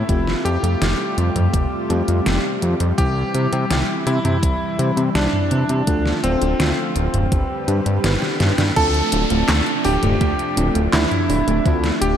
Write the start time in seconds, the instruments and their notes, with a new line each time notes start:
Already playing: supersaw synth A3, electric grand piano E4
0.09 analog synth bass F1, supersaw synth C3 G3 F4, fm electric piano A3 C4 F4 G4, kick, closed hi-hat
0.27 snare
0.45 analog synth bass F2, electric grand piano G4, closed hi-hat
0.63 analog synth bass F2, fm electric piano A3 C4 F4 G4, closed hi-hat
0.81 analog synth bass F1, snare, closed hi-hat
1.18 analog synth bass F2, closed hi-hat
1.36 analog synth bass F2, closed hi-hat, mid tom
1.54 analog synth bass F1, kick, closed hi-hat
1.90 analog synth bass F2, fm electric piano A3 C4 F4 G4, closed hi-hat
2.08 analog synth bass F2, closed hi-hat
2.26 analog synth bass F1, snare, closed hi-hat
2.62 analog synth bass F2, closed hi-hat
2.80 analog synth bass F2, closed hi-hat
2.98 analog synth bass C2, supersaw synth E3 E4, fm electric piano G3 C4 E4 G4, electric grand piano G4, kick, closed hi-hat
3.35 analog synth bass C3, closed hi-hat
3.52 analog synth bass C3, fm electric piano G3 C4 E4 G4, closed hi-hat
3.71 analog synth bass C2, snare, closed hi-hat
4.07 analog synth bass C3, electric grand piano E4, closed hi-hat
4.25 analog synth bass C3, closed hi-hat, mid tom
4.43 analog synth bass C2, kick, closed hi-hat
4.79 analog synth bass C3, fm electric piano G3 C4 E4 G4, closed hi-hat
4.97 analog synth bass C3, closed hi-hat
5.15 analog synth bass C2, electric grand piano D4, snare, closed hi-hat
5.33 mid tom
5.51 analog synth bass C3, closed hi-hat
5.69 analog synth bass C3, closed hi-hat
5.87 analog synth bass D2, supersaw synth D3 F3 A3 F4, fm electric piano A3 D4 F4 A4, kick, closed hi-hat
6.06 snare
6.23 analog synth bass D1, electric grand piano C4, closed hi-hat
6.41 analog synth bass D1, fm electric piano A3 D4 F4 A4, closed hi-hat
6.60 analog synth bass D2, snare, closed hi-hat
6.96 analog synth bass D1, closed hi-hat
7.14 analog synth bass D1, closed hi-hat, mid tom
7.32 analog synth bass G1, supersaw synth D3 G3 G4 B4, kick, closed hi-hat
7.68 analog synth bass G2, fm electric piano G3 D4 G4 B4, closed hi-hat
7.86 analog synth bass G2, closed hi-hat
8.04 analog synth bass G1, snare, closed hi-hat
8.22 snare
8.40 analog synth bass G2, snare, closed hi-hat, mid tom
8.58 analog synth bass G2, snare, closed hi-hat
8.76 analog synth bass D2, supersaw synth C3 F3 A3 D4, fm electric piano A3 C4 D4 F4, synth arpeggio sound A3, electric grand piano A4, synth bell A5, kick, closed hi-hat, crash, downlifter
8.94 closed hi-hat
9.12 analog synth bass D1, synth arpeggio sound D4, closed hi-hat
9.30 analog synth bass D1, fm electric piano A3 C4 D4 F4, synth arpeggio sound A3, closed hi-hat
9.48 analog synth bass D2, synth arpeggio sound A3, snare, clap, closed hi-hat
9.66 closed hi-hat
9.85 analog synth bass D1, synth arpeggio sound D4, electric grand piano G4, synth bell G5, open hi-hat
10.03 analog synth bass D1, synth arpeggio sound A3, closed hi-hat, mid tom
10.21 analog synth bass D2, synth arpeggio sound A3, kick, closed hi-hat
10.39 closed hi-hat
10.57 analog synth bass D1, fm electric piano F3 A3 C4 D4, synth arpeggio sound D4, closed hi-hat
10.75 analog synth bass D1, synth arpeggio sound A3, closed hi-hat
10.93 analog synth bass D2, synth arpeggio sound A3, electric grand piano E4, synth bell E5, snare, clap, closed hi-hat
11.11 closed hi-hat, mid tom
11.29 analog synth bass D1, synth arpeggio sound D4, open hi-hat
11.47 analog synth bass D1, synth arpeggio sound A3, closed hi-hat
11.65 analog synth bass D2, fm electric piano A3 C4 D4 F4, synth arpeggio sound A3, kick, closed hi-hat
11.84 snare, closed hi-hat
12.01 analog synth bass D1, synth arpeggio sound D4, electric grand piano G4, synth bell G5, closed hi-hat